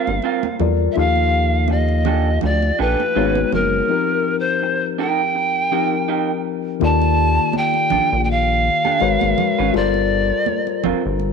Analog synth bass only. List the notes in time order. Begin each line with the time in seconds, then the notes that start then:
0.08 G1
0.60 E2
0.97 D#2
2.44 D2
2.80 A#1
3.17 G#1
3.53 F#1
6.82 D#2
7.92 A#1
8.13 A#1
9.02 G#1
9.23 G#1
9.59 G#1
9.75 G1
10.85 G1
11.06 G1